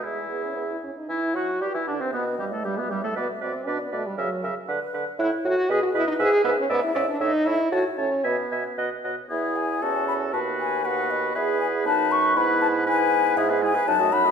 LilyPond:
<<
  \new Staff \with { instrumentName = "Flute" } { \time 2/4 \key e \major \tempo 4 = 118 e''4. r8 | \key e \minor r4 b'4 | dis''4 e''4~ | e''4 d''4 |
cis''8 ais'8 b'4 | \key e \major cis''4 b'4~ | b'4 e''4 | dis''4 cis''8 r8 |
b'4 b'8 cis''8 | e''8 gis''8 a''8 b''8 | a''8 gis''8 fis''8 dis''8 | e''8 gis''8 a''8 cis'''8 |
b''8 a''8 gis''4 | e''8 gis''8 a''8 b''8 | }
  \new Staff \with { instrumentName = "Oboe" } { \time 2/4 \key e \major e'4. r8 | \key e \minor e'8 fis'8 g'16 e'16 d'16 c'16 | b8 g'16 a'16 g'16 b16 g'16 a'16 | d''8 d''8 d''8 d''8 |
e''8 e''8 fis''8 fis''8 | \key e \major fis''8 fis''8 dis''8 dis''8 | e''8 e''8 e''8 e''8 | e''8 e''8 a''8 a''8 |
gis''8 gis''8 fis''8 fis''8 | gis'4 a'4 | b'4 b'4 | b'4 b'4 |
b'4 b'4 | gis'16 b'16 gis'16 b'16 fis''16 dis''16 fis''16 dis''16 | }
  \new Staff \with { instrumentName = "Clarinet" } { \time 2/4 \key e \major gis'4. r8 | \key e \minor e'8 fis'8 g'16 e'16 d'16 c'16 | b8 g16 a16 g16 b16 g16 a16 | b'8 b'8 b'8 b'8 |
ais'8 ais'8 b'8 b'8 | \key e \major cis''8 cis''8 b'8 b'8 | b'8 b'8 d''8 d''8 | cis''8 cis''8 cis''8 cis''8 |
e''8 e''8 dis''8 dis''8 | e'4 fis'4 | fis'4 fis'4 | gis'4 dis'4 |
e'4 e'4 | e'16 gis'16 e'16 gis'16 dis'16 fis'16 dis'16 fis'16 | }
  \new Staff \with { instrumentName = "French horn" } { \time 2/4 \key e \major gis8 b16 cis'16 b16 e'16 cis'16 dis'16 | \key e \minor e'8 fis'8 g'16 e'16 d'16 c'16 | b8 g16 a16 g16 b16 g16 a16 | b8 c'8 d'16 b16 a16 g16 |
fis8 r4. | \key e \major e'8 fis'8 gis'16 fis'16 e'16 dis'16 | gis'8 b16 cis'16 b16 e'16 cis'16 d'16 | dis'8 e'8 fis'8 cis'8 |
b4 r4 | b4 cis'4 | b4 b4 | b4 b4 |
b4 b4 | gis16 b16 gis16 b16 fis16 a16 fis16 a16 | }
  \new Staff \with { instrumentName = "Bassoon" } { \clef bass \time 2/4 \key e \major e,4. r8 | \key e \minor e8 fis8 g16 e16 d16 c16 | b,8 g,16 a,16 g,16 b,16 g,16 a,16 | b,8 b,8 b,8 b,8 |
cis8 cis8 d8 d8 | \key e \major a,8 a,8 b,8 b,8 | gis,8 gis,8 gis,8 gis,8 | a,8 a,8 a,8 a,8 |
b,8 b,8 b,8 b,8 | e,4 e,4 | dis,2 | e,4 fis,4 |
gis,2 | gis,4 fis,4 | }
>>